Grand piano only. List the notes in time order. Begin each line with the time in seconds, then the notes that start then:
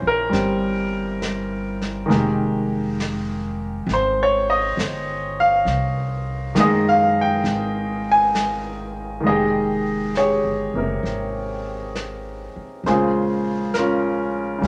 Already playing: C3 E3 A#3 C#4 C5
0.07 A#4
0.30 G3 C4
2.06 D#3 G#3 A#3
2.11 G4
3.93 C5
4.23 C#5
4.50 D#5
5.40 F5
6.55 D#3 G#3
6.59 A#3 G#4 D#5
6.89 F5
7.21 G5
8.12 G#5
9.20 D#3 G#3
9.27 A#3 G4 G#4 D#5
9.31 G5
10.17 G4 G#4 C#5
10.75 C3 A#3 A#4
12.86 C#3 G#3 A#3 F4 G#4 C5
13.74 C#4 A#4
13.78 F4
14.59 C#3 G3